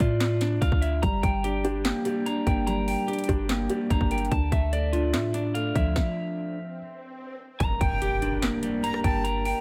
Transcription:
Already playing: D5 E5 A5
0.00 A2 F4, kick, closed hi-hat
0.20 snare, clap, closed hi-hat
0.41 D4, snare, closed hi-hat
0.61 D2 F5, kick, closed hi-hat
0.72 D2, kick
0.82 E5, closed hi-hat
1.02 G1 G3 A#5, kick, closed hi-hat
1.23 G1 G5, kick, closed hi-hat
1.44 D4 G4, closed hi-hat
1.64 D4 G4, closed hi-hat
1.85 A#3 G5, snare, clap, closed hi-hat
2.05 G3 G4, closed hi-hat
2.26 D4 A#5, closed hi-hat
2.46 G1 A#3 G5, kick, closed hi-hat
2.67 G3 A#5, closed hi-hat
2.88 G5, open hi-hat
3.08 D4 G4, closed hi-hat
3.13 closed hi-hat
3.19 closed hi-hat
3.24 closed hi-hat
3.28 G1 D4 G4, kick, closed hi-hat
3.49 A#3 G5, snare, clap, closed hi-hat
3.70 G3 G4, closed hi-hat
3.90 G1 D4 A#5, kick, closed hi-hat
4.01 G1, kick
4.11 A#3 G5, closed hi-hat
4.18 closed hi-hat
4.25 closed hi-hat
4.31 D2 D3 A5, kick, closed hi-hat
4.52 D2 E5, kick, closed hi-hat
4.73 A3 D5, closed hi-hat
4.93 D4 F4, closed hi-hat
5.14 A2 E5, snare, clap, closed hi-hat
5.34 D4, closed hi-hat
5.54 A3 F5, closed hi-hat
5.75 D2 F3 E5, kick, closed hi-hat
5.96 kick, snare, swell
7.60 G1 G3 D4 A#4 A#5, kick, closed hi-hat, impact
7.81 G1 G5, kick, closed hi-hat
8.02 G4, closed hi-hat
8.22 D4, closed hi-hat
8.42 A#3, snare, clap, closed hi-hat
8.63 G3, closed hi-hat
8.84 A#5, closed hi-hat
8.94 cross-stick
9.04 G1 G5 A5, kick, closed hi-hat
9.24 A#5, closed hi-hat
9.45 G5, open hi-hat

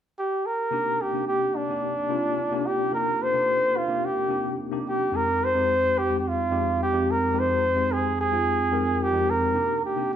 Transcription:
0.18 G4
0.46 A#4
0.71 C3 A#3 D4 D#4 G4
1.02 G4
1.13 C3 A#3 D4 D#4 G4
1.28 G4
1.56 D4
1.69 C3 A#3 D4 D#4 G4
2.09 C3 A#3 D4 D#4 F4
2.51 C3 A#3 D4 D#4 G4
2.66 G4
2.91 C3 A#3 D4 D#4 A#4
3.22 C5
3.33 C3 A#3 D4 D#4 G4
3.77 F4
3.88 C3 A#3 D4 D#4 G4
4.05 G4
4.29 C3 A#3 D4 D#4 G4
4.71 C3 A#3 D4 D#4 G4
4.88 G4
5.12 F2 G#3 C4 D#4 G4 A#4
5.44 C5
5.54 F2 G#3 C4 D#4 G4
5.98 G4
6.10 F2 G#3 C4 D#4 G4
6.19 G4
6.28 F4
6.50 F2 G#3 C4 D#4 G4
6.83 G4
6.93 F2 G#3 C4 D#4 G4
7.11 A#4
7.33 F2 G#3 C4 D#4 G4
7.39 C5
7.76 F2 G#3 C4 D#4 G#4
7.93 G#4
8.20 G#4
8.31 F2 G#3 C4 D#4 F4
8.71 F2 G#3 C4 D#4 A#4
9.03 G4
9.13 F2 G#3 C4 D#4 G4
9.30 A#4
9.54 C3 A#3 D4 D#4 G4
9.85 G4
9.96 C3 A#3 D4 D#4 G4

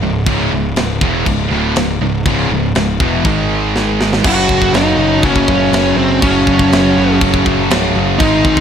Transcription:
0.02 C#1 C#2 G#2
0.26 C#1 C#2 G#2 C#3, kick, china
0.52 C#1 C#2 G#2
0.76 C#1 C#2 G#2, snare, china
1.01 E1 E2 B2 E3, kick
1.26 C#1 C#2 G#2, kick, china
1.51 D1 D2 A2 D3
1.76 C#1 C#2 G#2, snare, china
2.01 C#1 C#2 G#2
2.25 C#1 C#2 G#2 C#3, kick, china
2.49 C#1 C#2 G#2
2.75 C#1 C#2 G#2, snare, china
3.00 E1 E2 B2 E3, kick
3.24 G#1 G#2 D#3 G#3, kick, china
3.76 snare
4.01 snare
4.13 snare
4.23 F#1 F#2 C#3 F#3 A3 C#4 F#4 C#5 F#5 A5, kick, crash, china
4.49 F#1, kick
4.62 kick
4.73 F#1 D#4 D#5, snare, china
4.97 F#1 F#2 C#3 F#3
5.23 F#1 F#2 C#3 F#3 A3 C#4 F#4 C#5, kick, china
5.36 kick
5.48 F#1, kick
5.72 F#1, snare, china
5.96 F#1 C4 C5
6.22 F#1 F#2 C#3 F#3 A3 C#4 F#4 C#5, kick, china
6.47 F#1, kick
6.59 kick
6.72 F#1, snare, china
6.97 F#1 F#2 C#3 F#3
7.21 F#1 F#2 C#3 F#3 A3 C#4 F#4, kick, china
7.34 kick
7.46 F#1, kick
7.71 C#1, snare, china
7.96 F#1
8.19 G#1 G#2 D#3 G#3 C4 D#4 G#4 D#5 C6, kick, china
8.23 G#4
8.45 G#1, kick
8.57 kick

